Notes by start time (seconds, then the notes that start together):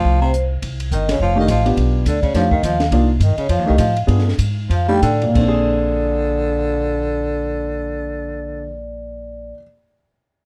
Already playing: F3 A3 D4 D#4 G4 F5
0.04 C2
0.21 C3 C5
0.34 closed hi-hat
0.62 C2, kick, ride
0.80 ride
0.91 G1 D#3 D#5, kick, hi-hat pedal
1.09 C#3 C#5, snare, ride
1.20 F1 F3 F5, kick
1.36 D#3 A3 D4 D#4 G4 D#5
1.48 A1 F3 F5, kick, hi-hat pedal, ride
1.65 B3 D4 F4 G4, ride
1.77 B1, kick, ride
2.05 D2 D3 D5, kick, hi-hat pedal, ride
2.22 C#3 C#5, kick, ride
2.34 F2 F3 A3 D4 D#4 G4 F5, kick, snare, ride
2.51 D#3 D#5, kick
2.63 D#2 F3 F5, kick, hi-hat pedal, ride
2.80 snare, ride
2.91 C2 A#3 D4 D#4 F4, kick, ride
3.20 G2 D#3 D#5, kick, hi-hat pedal, ride
3.37 C#3 C#5, muted upright bass stroke, ride
3.49 F2 F3 F5, kick, ride
3.59 D#2
3.66 C2 D#3 A3 D4 D#4 G4 D#5
3.78 A2 F3 F5, kick, hi-hat pedal, ride
3.97 ride
4.07 G2 B3 D4 F4 G#4, kick, ride
4.19 snare
4.29 snare
4.38 G#2, kick, hi-hat pedal, ride
4.70 F2 F3 F5, kick, ride
4.88 G3 A3 D4 D#4 G4 G5
5.02 A2 D3 D5, kick, hi-hat pedal, ride
5.22 A#2, ride
5.29 A#3
5.33 A#1 D3 C4 D5, kick, crash
5.41 D4
5.48 G#4